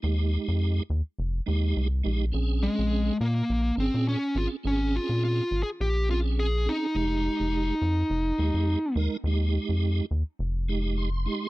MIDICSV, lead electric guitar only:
0, 0, Header, 1, 2, 480
1, 0, Start_track
1, 0, Key_signature, -4, "minor"
1, 0, Tempo, 576369
1, 27, Time_signature, 4, 2, 24, 8
1, 9572, End_track
2, 0, Start_track
2, 0, Title_t, "Lead electric guitar"
2, 0, Program_c, 0, 29
2, 2189, Note_on_c, 0, 56, 82
2, 2635, Note_off_c, 0, 56, 0
2, 2674, Note_on_c, 0, 58, 86
2, 3117, Note_off_c, 0, 58, 0
2, 3165, Note_on_c, 0, 60, 79
2, 3380, Note_off_c, 0, 60, 0
2, 3401, Note_on_c, 0, 61, 79
2, 3641, Note_off_c, 0, 61, 0
2, 3645, Note_on_c, 0, 65, 111
2, 3707, Note_off_c, 0, 65, 0
2, 3891, Note_on_c, 0, 61, 98
2, 4126, Note_off_c, 0, 61, 0
2, 4130, Note_on_c, 0, 65, 105
2, 4342, Note_off_c, 0, 65, 0
2, 4369, Note_on_c, 0, 65, 106
2, 4686, Note_off_c, 0, 65, 0
2, 4690, Note_on_c, 0, 68, 85
2, 4731, Note_off_c, 0, 68, 0
2, 4840, Note_on_c, 0, 67, 99
2, 5057, Note_off_c, 0, 67, 0
2, 5086, Note_on_c, 0, 65, 105
2, 5148, Note_off_c, 0, 65, 0
2, 5327, Note_on_c, 0, 68, 101
2, 5563, Note_off_c, 0, 68, 0
2, 5571, Note_on_c, 0, 63, 96
2, 7444, Note_off_c, 0, 63, 0
2, 9572, End_track
0, 0, End_of_file